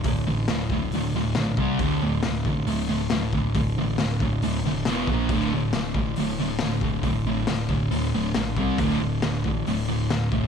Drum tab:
HH |o---o---o---o---|o---o---o---o---|o---o---o---o---|o---o---o---o---|
SD |----o-------o---|----o-------o---|----o-------o---|-o--o-------o---|
BD |o-----o-------o-|o-----o-------o-|o-----o-------o-|o-----o-------o-|

HH |o---o---o---o---|o---o---o---o---|
SD |----o-------o---|-o--o-------o---|
BD |o-----o-------o-|o-----o-------o-|